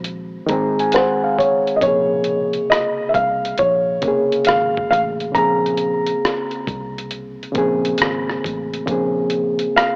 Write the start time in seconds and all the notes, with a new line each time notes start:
Already playing: A#1 D#3 G#3 C4 F#4 C5
0.04 closed hi-hat
0.46 G#1 D#3 G#3 A#5, kick, closed hi-hat
0.50 C4 G#4
0.79 G#5, closed hi-hat
0.92 C5 F#5, cross-stick, closed hi-hat
1.24 F5
1.39 C#5, kick, closed hi-hat
1.67 closed hi-hat
1.76 D#5
1.81 A#1 C#3 A#3 C#5, kick, closed hi-hat
1.85 C3 G#4
2.24 closed hi-hat
2.53 closed hi-hat
2.70 D#5, cross-stick, closed hi-hat
3.09 E5
3.14 C2 F5, kick, closed hi-hat
3.45 closed hi-hat
3.58 A#1 C#5, kick, closed hi-hat
4.02 C#3 A#3, kick, closed hi-hat
4.06 C3 G#4
4.32 closed hi-hat
4.45 G#1 F5, cross-stick, closed hi-hat
4.77 kick
4.90 A1 F5, cross-stick, closed hi-hat
5.20 closed hi-hat
5.32 A#1 C#3 A#3 C4 A#5, kick, closed hi-hat
5.38 G#4
5.66 closed hi-hat
5.77 closed hi-hat
6.07 closed hi-hat
6.25 cross-stick, closed hi-hat
6.51 closed hi-hat
6.67 C2, kick, closed hi-hat
6.98 closed hi-hat
7.11 closed hi-hat
7.43 closed hi-hat
7.52 A#1 C#3 A#3 C4, kick, closed hi-hat
7.58 G#4
7.85 closed hi-hat
7.98 G#1, cross-stick, closed hi-hat
8.30 cross-stick
8.44 A1, kick, closed hi-hat
8.73 closed hi-hat
8.86 A#1 C#3 A#3 C4, kick, closed hi-hat
8.91 G#4
9.30 closed hi-hat
9.59 closed hi-hat
9.76 F5, cross-stick, closed hi-hat